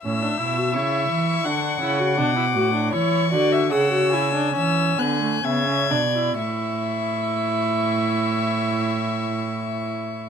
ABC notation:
X:1
M:4/4
L:1/16
Q:1/4=70
K:A
V:1 name="Violin"
e'4 c'8 d'4 | c'4 e'4 e'2 f'2 g'4 | c'16 |]
V:2 name="Violin"
e8 f8 | c2 d e f2 g6 e2 d2 | e16 |]
V:3 name="Viola"
C D E F E4 D2 E F D E F D | E2 F2 G F E D C2 B, A, B, C D E | E16 |]
V:4 name="Cello" clef=bass
A,,2 B,,2 C,2 E,2 D,2 C,2 B,,2 A,,2 | E,2 D,2 C,4 E,2 D,2 C,2 B,,2 | A,,16 |]